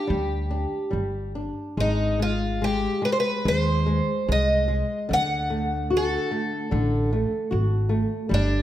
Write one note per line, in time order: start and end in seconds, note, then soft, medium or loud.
0.00 1.31 G4 medium
0.07 0.64 D2 loud
0.07 0.49 G3 medium
0.51 0.92 D4 soft
0.91 1.48 G1 medium
0.91 1.33 G3 soft
1.35 1.76 D4 soft
1.77 2.86 G#1 medium
1.77 2.18 G#3 medium
1.77 2.22 D#4 medium
2.19 2.60 G#3 soft
2.19 2.64 F4 medium
2.62 3.01 G#3 medium
2.62 3.05 G4 medium
3.02 3.43 G#3 medium
3.02 3.11 B4 medium
3.12 3.18 C5 medium
3.20 3.47 B4 medium
3.45 3.99 D#2 loud
3.45 3.85 G#3 medium
3.45 4.31 C5 loud
3.86 4.26 G#3 medium
4.28 4.81 C2 medium
4.28 4.67 G#3 medium
4.28 5.13 D#5 medium
4.68 5.07 G#3 medium
5.09 6.15 D2 medium
5.09 6.70 D3 medium
5.13 5.95 F#5 loud
5.50 5.89 A3 medium
5.90 6.30 F#4 medium
5.97 7.89 A4 medium
6.31 6.70 A3 medium
6.71 7.23 A1 loud
6.71 7.10 D3 medium
7.13 7.50 A3 medium
7.51 8.03 G#1 medium
7.51 7.89 F#4 medium
7.89 8.28 A3 medium
8.29 8.62 G1 medium
8.29 8.62 G3 medium
8.34 8.62 D4 medium